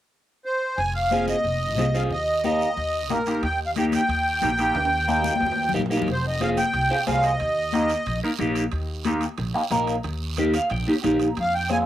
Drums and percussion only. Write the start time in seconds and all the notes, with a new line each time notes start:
0.78 long guiro
1.11 high conga, short guiro
1.28 high conga, short guiro
1.45 long guiro
1.77 high conga, short guiro
1.95 short guiro
2.11 long guiro
2.44 high conga, short guiro
2.60 short guiro
2.77 long guiro
3.10 high conga, short guiro
3.26 short guiro
3.43 high timbale, long guiro
3.76 high conga, high timbale, short guiro
3.92 high conga, high timbale, short guiro
4.09 high timbale, long guiro
4.42 high conga, high timbale, low timbale, short guiro
4.58 high timbale, short guiro
4.75 high timbale, long guiro
4.85 high timbale
5.08 high conga, short guiro
5.19 low timbale
5.24 high conga, short guiro
5.30 low timbale
5.36 high conga
5.40 low timbale, long guiro
5.46 high conga
5.52 low timbale
5.63 low timbale
5.69 low conga
5.74 low timbale, short guiro
5.80 low conga
5.86 low timbale
5.91 short guiro
5.97 low timbale
6.02 low conga
6.08 high timbale, long guiro
6.41 high conga, high timbale, short guiro
6.57 high conga, high timbale, short guiro
6.73 high timbale, long guiro
7.07 high conga, high timbale, low timbale, short guiro
7.23 high timbale, short guiro
7.40 high timbale, long guiro
7.73 high conga, high timbale, short guiro
7.89 high timbale, short guiro
8.06 high timbale, long guiro
8.38 high conga, high timbale, short guiro
8.55 high timbale, short guiro
8.72 high timbale, long guiro
9.04 high conga, high timbale, short guiro
9.21 high timbale, short guiro
9.38 high timbale, long guiro
9.71 high conga, high timbale, short guiro
9.87 high timbale, short guiro
10.03 high timbale, long guiro
10.37 high conga, high timbale, short guiro
10.54 high timbale, short guiro
10.70 high timbale, long guiro
11.03 high conga, high timbale, low timbale, short guiro
11.20 high timbale, short guiro
11.35 high timbale, long guiro
11.69 high conga, high timbale, short guiro